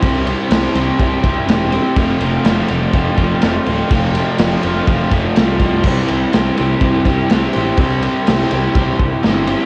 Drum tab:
CC |--------|--------|--------|x-------|
RD |xxxxxxxx|xxxxxxxx|xxxxxxxx|-xxxxxxx|
SD |--o---o-|--o---o-|--o---o-|--o---o-|
BD |o---oo--|o---oo--|o---oo-o|o---oo--|

CC |--------|
RD |xxxxxxxx|
SD |--o---o-|
BD |o---oo--|